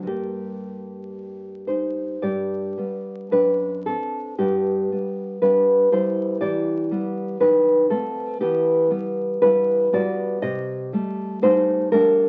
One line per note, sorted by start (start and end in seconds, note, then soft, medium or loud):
0.02 2.17 G2 soft
0.02 2.18 G3 soft
0.02 2.19 A#3 soft
0.07 1.64 G4 soft
1.67 2.20 D#4 soft
1.67 2.21 C5 medium
2.22 2.76 G2 soft
2.22 3.29 G4 soft
2.22 3.28 D5 medium
2.77 3.28 G3 soft
2.77 3.29 B3 soft
3.31 3.84 F#2 soft
3.31 3.83 D4 medium
3.31 3.84 B4 medium
3.86 4.36 C4 soft
3.86 4.35 D4 soft
3.86 4.37 A4 medium
4.38 4.89 G2 medium
4.38 4.91 B3 medium
4.38 5.38 G4 medium
4.92 5.41 G3 soft
4.92 5.41 B3 soft
5.42 5.91 G3 soft
5.42 5.92 B3 soft
5.42 5.89 D4 medium
5.42 5.90 B4 medium
5.92 6.37 G3 soft
5.92 6.38 B3 soft
5.92 6.38 E4 soft
5.92 6.39 C5 medium
6.41 6.89 E3 medium
6.41 7.36 G4 soft
6.41 7.36 D5 medium
6.91 7.36 G3 soft
6.91 7.37 B3 soft
7.40 7.89 D#3 medium
7.40 7.87 D#4 medium
7.40 7.88 B4 medium
7.90 8.37 A3 soft
7.90 8.37 B3 soft
7.90 8.38 C4 medium
7.90 8.39 A4 medium
8.41 8.90 E3 medium
8.41 8.90 B3 medium
8.41 9.38 G4 medium
8.90 9.41 G3 soft
8.90 9.41 B3 medium
9.42 9.92 G3 soft
9.42 9.92 B3 soft
9.42 9.90 E4 medium
9.42 9.90 B4 medium
9.93 10.39 G3 soft
9.93 10.39 B3 medium
9.93 10.40 F#4 medium
9.93 10.41 D5 medium
10.42 10.91 C3 medium
10.42 11.38 G4 medium
10.42 11.38 D#5 medium
10.93 11.41 G3 medium
10.93 11.41 A3 medium
11.42 11.91 G3 soft
11.42 11.92 A3 medium
11.42 11.89 D#4 medium
11.42 11.90 C5 medium
11.92 12.29 G3 soft
11.92 12.29 A3 medium
11.92 12.29 D4 medium
11.92 12.29 A#4 medium